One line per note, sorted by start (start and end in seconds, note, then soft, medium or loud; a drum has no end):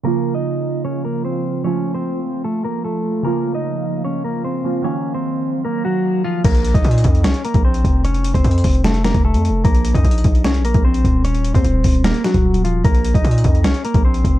0.04 1.61 C#3 medium
0.04 1.63 C#3 medium
0.04 4.81 F3 medium
0.04 1.61 F3 medium
0.04 1.63 A#3 medium
0.04 0.33 A#3 medium
0.04 1.62 A#3 medium
0.04 1.63 F4 medium
0.04 0.33 A#4 loud
0.35 0.82 D#4 medium
0.35 0.82 D#5 medium
0.85 1.02 C#4 medium
0.85 1.02 C#5 medium
1.05 1.22 A#3 medium
1.05 1.22 A#4 medium
1.25 1.63 C4 medium
1.25 1.62 C5 medium
1.64 3.21 F3 medium
1.64 3.23 A3 medium
1.64 3.22 A3 medium
1.64 1.93 C#4 medium
1.64 3.23 F4 medium
1.64 3.22 F4 medium
1.64 1.93 C#5 medium
1.94 2.42 C4 medium
1.94 2.41 C5 medium
2.44 2.62 A3 medium
2.44 2.62 A4 medium
2.64 2.82 A#3 medium
2.64 2.82 A#4 medium
2.84 3.23 A3 medium
2.84 3.22 A4 medium
3.23 4.61 C#3 medium
3.23 4.83 C#3 medium
3.23 4.62 F3 medium
3.23 6.41 A#3 medium
3.23 3.53 A#3 medium
3.23 4.62 A#3 medium
3.23 4.63 F4 medium
3.23 3.53 A#4 loud
3.23 6.41 F5 medium
3.55 4.02 D#4 medium
3.55 4.02 D#5 medium
4.05 4.22 C#4 medium
4.05 4.22 C#5 medium
4.24 4.42 A#3 medium
4.24 4.42 A#4 medium
4.44 4.83 C4 medium
4.44 4.82 C5 medium
4.64 4.84 C#3 medium
4.64 4.85 F3 soft
4.64 4.83 A#3 soft
4.64 4.85 F4 medium
4.82 6.40 D#3 medium
4.82 6.43 D#3 medium
4.82 6.41 F#3 medium
4.82 6.43 F#3 medium
4.82 6.41 A#3 medium
4.82 5.13 C#4 medium
4.82 5.13 C#5 loud
4.82 6.42 F5 medium
5.14 5.62 C4 medium
5.14 5.61 C5 medium
5.65 5.83 A#3 medium
5.65 5.82 A#4 medium
5.85 6.23 F#3 medium
5.85 6.22 F#4 medium
6.24 6.42 F3 medium
6.24 6.42 F4 medium
6.44 6.73 A#1 loud
6.44 6.73 A#3 medium
6.44 6.73 A#4 loud
6.44 kick loud
6.44 closed hi-hat medium
6.44 crash medium
6.54 closed hi-hat medium
6.64 closed hi-hat medium
6.74 6.84 A#1 loud
6.74 7.22 D#4 medium
6.74 7.21 D#5 medium
6.74 kick medium
6.74 closed hi-hat medium
6.84 7.04 A#2 loud
6.84 closed hi-hat medium
6.91 closed hi-hat medium
6.98 closed hi-hat medium
7.04 7.26 F2 loud
7.04 kick loud
7.04 closed hi-hat medium
7.15 closed hi-hat soft
7.24 7.34 C2 loud
7.24 7.42 C#4 medium
7.24 7.42 C#5 medium
7.24 snare loud
7.24 closed hi-hat medium
7.34 closed hi-hat medium
7.45 7.62 A#3 medium
7.45 7.62 A#4 medium
7.45 closed hi-hat medium
7.54 7.83 A#1 loud
7.54 kick medium
7.54 closed hi-hat medium
7.65 8.03 C4 medium
7.65 8.02 C5 medium
7.74 closed hi-hat medium
7.84 8.32 F1 loud
7.84 kick medium
7.84 closed hi-hat medium
8.05 8.33 C#4 medium
8.05 8.33 C#5 loud
8.05 closed hi-hat medium
8.14 closed hi-hat medium
8.24 closed hi-hat medium
8.34 8.44 F1 loud
8.34 8.82 C4 medium
8.34 8.81 C5 medium
8.34 kick medium
8.34 closed hi-hat medium
8.44 8.64 F2 loud
8.44 closed hi-hat medium
8.51 closed hi-hat medium
8.58 closed hi-hat medium
8.64 9.13 F1 loud
8.64 kick loud
8.64 open hi-hat medium
8.75 closed hi-hat soft
8.84 9.02 A3 medium
8.84 9.02 A4 medium
8.84 snare loud
8.84 closed hi-hat medium
8.94 closed hi-hat medium
9.04 9.23 A#3 medium
9.04 9.22 A#4 medium
9.04 snare loud
9.04 closed hi-hat medium
9.14 9.36 F1 loud
9.14 kick medium
9.14 closed hi-hat medium
9.25 9.63 A3 medium
9.25 9.62 A4 medium
9.34 9.51 F2 loud
9.34 closed hi-hat medium
9.45 closed hi-hat medium
9.49 9.64 F1 loud
9.65 9.93 A#1 loud
9.65 9.93 A#3 medium
9.65 9.93 A#4 loud
9.65 kick loud
9.65 closed hi-hat medium
9.75 closed hi-hat medium
9.85 closed hi-hat medium
9.95 10.04 F2 loud
9.95 10.42 D#4 medium
9.95 10.42 D#5 medium
9.95 kick medium
9.95 closed hi-hat medium
10.04 10.24 A#1 loud
10.04 closed hi-hat medium
10.11 closed hi-hat medium
10.18 closed hi-hat medium
10.24 10.46 A#1 loud
10.24 kick medium
10.24 closed hi-hat medium
10.35 closed hi-hat soft
10.44 10.61 C2 loud
10.44 10.63 C#4 medium
10.44 10.62 C#5 medium
10.44 snare loud
10.44 closed hi-hat medium
10.54 closed hi-hat medium
10.59 10.74 A#1 loud
10.65 10.83 A#3 medium
10.65 10.82 A#4 medium
10.65 closed hi-hat medium
10.74 11.03 A#1 loud
10.74 kick medium
10.74 closed hi-hat medium
10.85 11.23 C4 medium
10.85 11.22 C5 medium
10.94 closed hi-hat medium
11.04 11.52 D#1 loud
11.04 kick medium
11.04 closed hi-hat medium
11.25 11.53 C#4 medium
11.25 11.53 C#5 loud
11.25 closed hi-hat medium
11.35 closed hi-hat medium
11.45 closed hi-hat medium
11.54 11.64 D#2 loud
11.54 12.02 C4 medium
11.54 12.02 C5 medium
11.54 kick medium
11.54 closed hi-hat medium
11.65 11.84 D#1 loud
11.65 closed hi-hat medium
11.84 12.13 D#1 loud
11.84 kick loud
11.84 open hi-hat medium
11.95 closed hi-hat soft
12.04 12.22 A#3 medium
12.04 12.22 A#4 medium
12.04 snare loud
12.04 closed hi-hat medium
12.14 closed hi-hat medium
12.24 12.63 F#3 medium
12.24 12.62 F#4 medium
12.24 snare loud
12.24 closed hi-hat medium
12.34 12.82 D#1 loud
12.34 kick medium
12.34 closed hi-hat medium
12.54 closed hi-hat medium
12.64 12.82 F3 medium
12.64 12.82 F4 medium
12.64 closed hi-hat medium
12.84 13.13 A#1 loud
12.84 13.13 A#3 medium
12.84 13.13 A#4 loud
12.84 kick loud
12.84 closed hi-hat medium
12.95 closed hi-hat medium
13.04 closed hi-hat medium
13.14 13.24 A#1 loud
13.14 13.62 D#4 medium
13.14 13.61 D#5 medium
13.14 kick medium
13.14 closed hi-hat medium
13.24 13.44 A#2 loud
13.24 closed hi-hat medium
13.31 closed hi-hat medium
13.38 closed hi-hat medium
13.44 13.66 F2 loud
13.44 kick loud
13.44 closed hi-hat medium
13.55 closed hi-hat soft
13.64 13.74 C2 loud
13.64 13.83 C#4 medium
13.64 13.82 C#5 medium
13.64 snare loud
13.64 closed hi-hat medium
13.74 closed hi-hat medium
13.85 14.03 A#3 medium
13.85 14.02 A#4 medium
13.85 closed hi-hat medium
13.94 14.23 A#1 loud
13.94 kick loud
13.94 closed hi-hat medium
14.05 14.39 C4 medium
14.05 14.39 C5 medium
14.14 closed hi-hat medium
14.24 14.39 F1 loud
14.24 kick medium
14.24 closed hi-hat medium